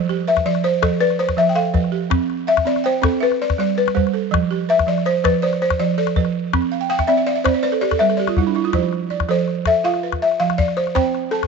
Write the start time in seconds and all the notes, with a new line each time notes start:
Already playing: F3
0.09 G4, calabash click
0.27 B4 E5
0.37 calabash thump, calabash click
0.46 F3 D5
0.55 calabash click
0.64 C5
0.82 F3 A4, calabash thump, calabash click
1.00 B4 D5
1.10 calabash click
1.19 C5
1.29 calabash thump, calabash click
1.37 F3 E5, calabash click
1.49 G5
1.55 A4 F5
1.74 F3 B4, calabash thump, calabash click
1.84 calabash click
1.92 G4
2.10 C4, calabash thump, calabash click
2.30 calabash click
2.47 E5 F5
2.57 calabash thump, calabash click
2.66 C4 D5
2.76 calabash click
2.84 C5 G5
3.02 C4 A4, calabash thump, calabash click
3.20 B4 E5
3.32 calabash click
3.42 D5
3.50 calabash thump, calabash click
3.58 G3 D5, calabash click
3.78 B4
3.88 calabash click
3.95 G3 C5, calabash thump, calabash click
4.07 calabash click
4.13 A4
4.31 F3, calabash thump, calabash click
4.51 G4, calabash click
4.69 B4 E5
4.79 calabash thump, calabash click
4.87 F3 D5
4.98 calabash click
5.05 C5
5.24 F3 B4, calabash thump, calabash click
5.42 C5 D5
5.53 calabash click
5.62 C5
5.70 calabash thump, calabash click
5.79 F3 D5, calabash click
5.98 A4 D5
6.07 calabash click
6.16 F3 B4, calabash thump, calabash click
6.25 calabash click
6.53 C4, calabash thump, calabash click
6.62 calabash click
6.72 F5
6.81 G5
6.90 F5 G5
6.99 E5, calabash thump, calabash click
7.07 C4 D5 E5, calabash click
7.17 E5
7.26 D5 F5
7.36 E5
7.44 C4 C5 D5, calabash thump, calabash click
7.54 C5
7.63 B4 D5, calabash click
7.72 A4, calabash click
7.81 G4 D5, calabash click
7.91 A4, calabash thump, calabash click
7.99 G3 B4 E5
8.10 A4, calabash click
8.17 G4 D5
8.27 F4, calabash click
8.37 G3 E4, calabash thump, calabash click
8.47 D4
8.55 E4, calabash click
8.64 F4, calabash click
8.73 F3 C5, calabash thump, calabash click
8.93 calabash click
9.10 D5, calabash click
9.20 calabash thump, calabash click
9.29 F3 A4 C5, calabash click
9.48 calabash click
9.66 A4 E5, calabash thump, calabash click
9.84 F4 F5
9.94 calabash click
10.03 B4
10.12 calabash thump, calabash click
10.22 E5
10.31 calabash click
10.40 F3 F5
10.50 calabash click
10.58 D5, calabash thump, calabash click
10.68 calabash click
10.77 C5, calabash click
10.87 calabash click
10.95 C4 C5 G5, calabash thump, calabash click
11.15 calabash click
11.31 A4 A5, calabash click
11.43 calabash thump, calabash click